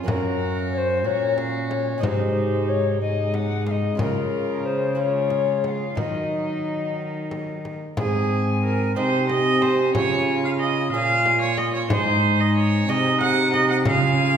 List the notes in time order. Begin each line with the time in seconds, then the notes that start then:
0.04 F#2 A#3 C#4 F#4 A#4
0.08 C#4, frame drum
0.72 C#5
0.77 C5
1.04 A#2 C#4 F#4 C#5
1.37 F5, frame drum
1.69 C#5, frame drum
1.98 G#2 C3 G#3 D#4
2.02 G#2 G#3 D#4 C5, frame drum
2.68 C#5
3.00 G#3 D#4 D#5
3.34 F#5, frame drum
3.66 F5, frame drum
3.71 D#5
3.95 G#3 F4 A#4, frame drum
3.99 C#3 G#3 F4
4.65 C5
4.95 G#3 F4 C#5
4.99 F4
5.30 frame drum
5.64 F#5, frame drum
5.70 F5
5.95 D#3 F#3 D#4 F#4 D#5, frame drum
7.31 frame drum
7.65 frame drum
7.97 G#2 C4 G#4 G#5, frame drum
8.64 A#4
8.96 C3 G#3 C4 D#4 C5 G#5
9.29 D#5, frame drum
9.62 C5, frame drum
9.95 C#3 F4 C#5 G#5, frame drum
10.45 F5
10.60 D#5
10.92 A#2 G#3 C#4 F4 F5 G#5
11.26 frame drum
11.41 C#5
11.57 D#5, frame drum
11.74 C#5
11.90 G#2 D#4 C5 G#5, frame drum
12.40 D#5
12.56 C#5
12.89 C3 G#3 D#4 G#4 D#5 G#5
13.21 F#5, frame drum
13.53 D#5, frame drum
13.70 F#5
13.85 C#3 F4 F5 G#5, frame drum